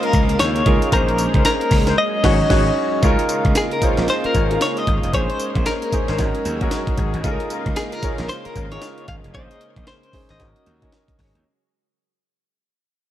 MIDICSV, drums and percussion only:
0, 0, Header, 1, 2, 480
1, 0, Start_track
1, 0, Tempo, 526316
1, 843, Time_signature, 4, 2, 24, 8
1, 11953, End_track
2, 0, Start_track
2, 0, Title_t, "Drums"
2, 26, Note_on_c, 9, 42, 52
2, 117, Note_off_c, 9, 42, 0
2, 120, Note_on_c, 9, 54, 68
2, 123, Note_on_c, 9, 36, 100
2, 123, Note_on_c, 9, 42, 65
2, 211, Note_off_c, 9, 54, 0
2, 214, Note_off_c, 9, 36, 0
2, 214, Note_off_c, 9, 42, 0
2, 266, Note_on_c, 9, 42, 60
2, 357, Note_off_c, 9, 42, 0
2, 359, Note_on_c, 9, 42, 71
2, 360, Note_on_c, 9, 38, 101
2, 362, Note_on_c, 9, 54, 90
2, 450, Note_off_c, 9, 42, 0
2, 451, Note_off_c, 9, 38, 0
2, 454, Note_off_c, 9, 54, 0
2, 508, Note_on_c, 9, 42, 49
2, 599, Note_off_c, 9, 42, 0
2, 601, Note_on_c, 9, 42, 76
2, 602, Note_on_c, 9, 36, 107
2, 692, Note_off_c, 9, 42, 0
2, 693, Note_off_c, 9, 36, 0
2, 749, Note_on_c, 9, 42, 56
2, 840, Note_off_c, 9, 42, 0
2, 841, Note_on_c, 9, 42, 80
2, 841, Note_on_c, 9, 54, 69
2, 842, Note_on_c, 9, 36, 107
2, 932, Note_off_c, 9, 54, 0
2, 933, Note_off_c, 9, 36, 0
2, 933, Note_off_c, 9, 42, 0
2, 990, Note_on_c, 9, 42, 57
2, 1080, Note_on_c, 9, 54, 86
2, 1081, Note_off_c, 9, 42, 0
2, 1081, Note_on_c, 9, 42, 80
2, 1171, Note_off_c, 9, 54, 0
2, 1173, Note_off_c, 9, 42, 0
2, 1224, Note_on_c, 9, 36, 96
2, 1226, Note_on_c, 9, 42, 49
2, 1316, Note_off_c, 9, 36, 0
2, 1317, Note_off_c, 9, 42, 0
2, 1320, Note_on_c, 9, 54, 100
2, 1322, Note_on_c, 9, 38, 124
2, 1322, Note_on_c, 9, 42, 67
2, 1411, Note_off_c, 9, 54, 0
2, 1413, Note_off_c, 9, 38, 0
2, 1414, Note_off_c, 9, 42, 0
2, 1469, Note_on_c, 9, 42, 60
2, 1559, Note_on_c, 9, 54, 70
2, 1561, Note_off_c, 9, 42, 0
2, 1561, Note_on_c, 9, 36, 93
2, 1562, Note_on_c, 9, 46, 80
2, 1650, Note_off_c, 9, 54, 0
2, 1652, Note_off_c, 9, 36, 0
2, 1653, Note_off_c, 9, 46, 0
2, 1705, Note_on_c, 9, 38, 61
2, 1705, Note_on_c, 9, 42, 52
2, 1796, Note_off_c, 9, 38, 0
2, 1796, Note_off_c, 9, 42, 0
2, 2041, Note_on_c, 9, 36, 113
2, 2041, Note_on_c, 9, 38, 108
2, 2041, Note_on_c, 9, 49, 85
2, 2133, Note_off_c, 9, 36, 0
2, 2133, Note_off_c, 9, 38, 0
2, 2133, Note_off_c, 9, 49, 0
2, 2282, Note_on_c, 9, 36, 108
2, 2282, Note_on_c, 9, 38, 107
2, 2282, Note_on_c, 9, 49, 86
2, 2373, Note_off_c, 9, 36, 0
2, 2373, Note_off_c, 9, 38, 0
2, 2373, Note_off_c, 9, 49, 0
2, 2760, Note_on_c, 9, 42, 80
2, 2760, Note_on_c, 9, 54, 65
2, 2762, Note_on_c, 9, 36, 106
2, 2851, Note_off_c, 9, 54, 0
2, 2852, Note_off_c, 9, 42, 0
2, 2853, Note_off_c, 9, 36, 0
2, 2909, Note_on_c, 9, 42, 61
2, 2999, Note_on_c, 9, 54, 82
2, 3000, Note_off_c, 9, 42, 0
2, 3000, Note_on_c, 9, 42, 80
2, 3090, Note_off_c, 9, 54, 0
2, 3091, Note_off_c, 9, 42, 0
2, 3145, Note_on_c, 9, 36, 93
2, 3146, Note_on_c, 9, 42, 53
2, 3236, Note_off_c, 9, 36, 0
2, 3238, Note_off_c, 9, 42, 0
2, 3238, Note_on_c, 9, 54, 106
2, 3241, Note_on_c, 9, 38, 127
2, 3241, Note_on_c, 9, 42, 65
2, 3330, Note_off_c, 9, 54, 0
2, 3332, Note_off_c, 9, 38, 0
2, 3332, Note_off_c, 9, 42, 0
2, 3388, Note_on_c, 9, 42, 60
2, 3479, Note_off_c, 9, 42, 0
2, 3481, Note_on_c, 9, 54, 68
2, 3482, Note_on_c, 9, 36, 90
2, 3484, Note_on_c, 9, 42, 85
2, 3572, Note_off_c, 9, 54, 0
2, 3573, Note_off_c, 9, 36, 0
2, 3575, Note_off_c, 9, 42, 0
2, 3624, Note_on_c, 9, 42, 49
2, 3625, Note_on_c, 9, 38, 64
2, 3715, Note_off_c, 9, 42, 0
2, 3716, Note_off_c, 9, 38, 0
2, 3720, Note_on_c, 9, 38, 66
2, 3720, Note_on_c, 9, 42, 70
2, 3720, Note_on_c, 9, 54, 66
2, 3811, Note_off_c, 9, 38, 0
2, 3812, Note_off_c, 9, 42, 0
2, 3812, Note_off_c, 9, 54, 0
2, 3868, Note_on_c, 9, 42, 45
2, 3960, Note_off_c, 9, 42, 0
2, 3963, Note_on_c, 9, 54, 66
2, 3964, Note_on_c, 9, 36, 87
2, 3965, Note_on_c, 9, 42, 59
2, 4054, Note_off_c, 9, 54, 0
2, 4056, Note_off_c, 9, 36, 0
2, 4056, Note_off_c, 9, 42, 0
2, 4112, Note_on_c, 9, 42, 62
2, 4203, Note_off_c, 9, 42, 0
2, 4204, Note_on_c, 9, 42, 71
2, 4205, Note_on_c, 9, 38, 102
2, 4207, Note_on_c, 9, 54, 92
2, 4295, Note_off_c, 9, 42, 0
2, 4296, Note_off_c, 9, 38, 0
2, 4298, Note_off_c, 9, 54, 0
2, 4349, Note_on_c, 9, 42, 46
2, 4441, Note_off_c, 9, 42, 0
2, 4444, Note_on_c, 9, 36, 92
2, 4444, Note_on_c, 9, 42, 76
2, 4535, Note_off_c, 9, 36, 0
2, 4535, Note_off_c, 9, 42, 0
2, 4592, Note_on_c, 9, 42, 55
2, 4683, Note_off_c, 9, 42, 0
2, 4683, Note_on_c, 9, 42, 88
2, 4683, Note_on_c, 9, 54, 64
2, 4684, Note_on_c, 9, 36, 107
2, 4774, Note_off_c, 9, 54, 0
2, 4775, Note_off_c, 9, 36, 0
2, 4775, Note_off_c, 9, 42, 0
2, 4830, Note_on_c, 9, 42, 61
2, 4921, Note_off_c, 9, 42, 0
2, 4921, Note_on_c, 9, 54, 82
2, 4922, Note_on_c, 9, 42, 79
2, 5012, Note_off_c, 9, 54, 0
2, 5013, Note_off_c, 9, 42, 0
2, 5066, Note_on_c, 9, 36, 92
2, 5068, Note_on_c, 9, 42, 51
2, 5157, Note_off_c, 9, 36, 0
2, 5159, Note_off_c, 9, 42, 0
2, 5160, Note_on_c, 9, 54, 97
2, 5162, Note_on_c, 9, 38, 121
2, 5163, Note_on_c, 9, 42, 64
2, 5251, Note_off_c, 9, 54, 0
2, 5253, Note_off_c, 9, 38, 0
2, 5254, Note_off_c, 9, 42, 0
2, 5309, Note_on_c, 9, 42, 56
2, 5401, Note_off_c, 9, 42, 0
2, 5402, Note_on_c, 9, 54, 69
2, 5404, Note_on_c, 9, 36, 92
2, 5406, Note_on_c, 9, 42, 80
2, 5494, Note_off_c, 9, 54, 0
2, 5495, Note_off_c, 9, 36, 0
2, 5497, Note_off_c, 9, 42, 0
2, 5547, Note_on_c, 9, 42, 49
2, 5548, Note_on_c, 9, 38, 65
2, 5639, Note_off_c, 9, 38, 0
2, 5639, Note_off_c, 9, 42, 0
2, 5641, Note_on_c, 9, 38, 62
2, 5641, Note_on_c, 9, 42, 68
2, 5641, Note_on_c, 9, 54, 75
2, 5645, Note_on_c, 9, 36, 86
2, 5732, Note_off_c, 9, 38, 0
2, 5732, Note_off_c, 9, 42, 0
2, 5732, Note_off_c, 9, 54, 0
2, 5736, Note_off_c, 9, 36, 0
2, 5787, Note_on_c, 9, 42, 51
2, 5879, Note_off_c, 9, 42, 0
2, 5884, Note_on_c, 9, 54, 66
2, 5887, Note_on_c, 9, 42, 67
2, 5976, Note_off_c, 9, 54, 0
2, 5978, Note_off_c, 9, 42, 0
2, 6028, Note_on_c, 9, 42, 56
2, 6030, Note_on_c, 9, 36, 92
2, 6119, Note_off_c, 9, 42, 0
2, 6120, Note_on_c, 9, 42, 72
2, 6121, Note_on_c, 9, 38, 109
2, 6122, Note_off_c, 9, 36, 0
2, 6124, Note_on_c, 9, 54, 86
2, 6212, Note_off_c, 9, 42, 0
2, 6213, Note_off_c, 9, 38, 0
2, 6215, Note_off_c, 9, 54, 0
2, 6267, Note_on_c, 9, 36, 97
2, 6269, Note_on_c, 9, 42, 48
2, 6359, Note_off_c, 9, 36, 0
2, 6360, Note_off_c, 9, 42, 0
2, 6361, Note_on_c, 9, 42, 75
2, 6363, Note_on_c, 9, 36, 95
2, 6452, Note_off_c, 9, 42, 0
2, 6455, Note_off_c, 9, 36, 0
2, 6510, Note_on_c, 9, 42, 53
2, 6601, Note_off_c, 9, 42, 0
2, 6601, Note_on_c, 9, 54, 67
2, 6602, Note_on_c, 9, 42, 83
2, 6603, Note_on_c, 9, 36, 109
2, 6692, Note_off_c, 9, 54, 0
2, 6693, Note_off_c, 9, 42, 0
2, 6694, Note_off_c, 9, 36, 0
2, 6750, Note_on_c, 9, 42, 60
2, 6841, Note_off_c, 9, 42, 0
2, 6842, Note_on_c, 9, 54, 84
2, 6844, Note_on_c, 9, 42, 80
2, 6933, Note_off_c, 9, 54, 0
2, 6935, Note_off_c, 9, 42, 0
2, 6986, Note_on_c, 9, 36, 89
2, 6987, Note_on_c, 9, 42, 53
2, 7077, Note_off_c, 9, 36, 0
2, 7078, Note_off_c, 9, 42, 0
2, 7079, Note_on_c, 9, 54, 104
2, 7081, Note_on_c, 9, 38, 119
2, 7081, Note_on_c, 9, 42, 62
2, 7170, Note_off_c, 9, 54, 0
2, 7172, Note_off_c, 9, 38, 0
2, 7173, Note_off_c, 9, 42, 0
2, 7226, Note_on_c, 9, 42, 60
2, 7317, Note_off_c, 9, 42, 0
2, 7318, Note_on_c, 9, 54, 67
2, 7322, Note_on_c, 9, 36, 91
2, 7322, Note_on_c, 9, 42, 78
2, 7410, Note_off_c, 9, 54, 0
2, 7413, Note_off_c, 9, 36, 0
2, 7413, Note_off_c, 9, 42, 0
2, 7463, Note_on_c, 9, 38, 66
2, 7463, Note_on_c, 9, 42, 48
2, 7554, Note_off_c, 9, 38, 0
2, 7554, Note_off_c, 9, 42, 0
2, 7560, Note_on_c, 9, 38, 62
2, 7560, Note_on_c, 9, 42, 67
2, 7560, Note_on_c, 9, 54, 77
2, 7651, Note_off_c, 9, 38, 0
2, 7651, Note_off_c, 9, 42, 0
2, 7651, Note_off_c, 9, 54, 0
2, 7708, Note_on_c, 9, 42, 46
2, 7799, Note_off_c, 9, 42, 0
2, 7803, Note_on_c, 9, 54, 68
2, 7804, Note_on_c, 9, 36, 91
2, 7805, Note_on_c, 9, 42, 66
2, 7894, Note_off_c, 9, 54, 0
2, 7895, Note_off_c, 9, 36, 0
2, 7896, Note_off_c, 9, 42, 0
2, 7949, Note_on_c, 9, 42, 62
2, 8040, Note_off_c, 9, 42, 0
2, 8040, Note_on_c, 9, 42, 73
2, 8041, Note_on_c, 9, 38, 100
2, 8043, Note_on_c, 9, 54, 83
2, 8131, Note_off_c, 9, 42, 0
2, 8132, Note_off_c, 9, 38, 0
2, 8135, Note_off_c, 9, 54, 0
2, 8187, Note_on_c, 9, 42, 47
2, 8278, Note_off_c, 9, 42, 0
2, 8281, Note_on_c, 9, 42, 74
2, 8283, Note_on_c, 9, 36, 95
2, 8372, Note_off_c, 9, 42, 0
2, 8374, Note_off_c, 9, 36, 0
2, 8430, Note_on_c, 9, 42, 53
2, 8521, Note_off_c, 9, 42, 0
2, 8522, Note_on_c, 9, 36, 106
2, 8523, Note_on_c, 9, 42, 78
2, 8614, Note_off_c, 9, 36, 0
2, 8614, Note_off_c, 9, 42, 0
2, 8672, Note_on_c, 9, 42, 60
2, 8763, Note_off_c, 9, 42, 0
2, 8763, Note_on_c, 9, 42, 78
2, 8854, Note_off_c, 9, 42, 0
2, 8905, Note_on_c, 9, 36, 91
2, 8908, Note_on_c, 9, 42, 51
2, 8997, Note_off_c, 9, 36, 0
2, 9000, Note_off_c, 9, 42, 0
2, 9001, Note_on_c, 9, 38, 118
2, 9001, Note_on_c, 9, 42, 57
2, 9092, Note_off_c, 9, 38, 0
2, 9093, Note_off_c, 9, 42, 0
2, 9151, Note_on_c, 9, 42, 55
2, 9241, Note_on_c, 9, 36, 91
2, 9242, Note_off_c, 9, 42, 0
2, 9244, Note_on_c, 9, 46, 82
2, 9332, Note_off_c, 9, 36, 0
2, 9335, Note_off_c, 9, 46, 0
2, 9384, Note_on_c, 9, 38, 61
2, 9384, Note_on_c, 9, 42, 49
2, 9475, Note_off_c, 9, 38, 0
2, 9475, Note_off_c, 9, 42, 0
2, 9482, Note_on_c, 9, 38, 59
2, 9482, Note_on_c, 9, 42, 66
2, 9484, Note_on_c, 9, 36, 89
2, 9573, Note_off_c, 9, 38, 0
2, 9573, Note_off_c, 9, 42, 0
2, 9575, Note_off_c, 9, 36, 0
2, 9630, Note_on_c, 9, 42, 47
2, 9721, Note_off_c, 9, 42, 0
2, 9725, Note_on_c, 9, 42, 62
2, 9817, Note_off_c, 9, 42, 0
2, 9870, Note_on_c, 9, 36, 95
2, 9870, Note_on_c, 9, 42, 57
2, 9961, Note_off_c, 9, 42, 0
2, 9962, Note_off_c, 9, 36, 0
2, 9962, Note_on_c, 9, 42, 68
2, 9963, Note_on_c, 9, 38, 102
2, 10054, Note_off_c, 9, 42, 0
2, 10055, Note_off_c, 9, 38, 0
2, 10108, Note_on_c, 9, 36, 94
2, 10110, Note_on_c, 9, 42, 47
2, 10199, Note_off_c, 9, 36, 0
2, 10202, Note_off_c, 9, 42, 0
2, 10204, Note_on_c, 9, 36, 98
2, 10206, Note_on_c, 9, 46, 72
2, 10295, Note_off_c, 9, 36, 0
2, 10298, Note_off_c, 9, 46, 0
2, 10354, Note_on_c, 9, 42, 54
2, 10445, Note_off_c, 9, 42, 0
2, 11953, End_track
0, 0, End_of_file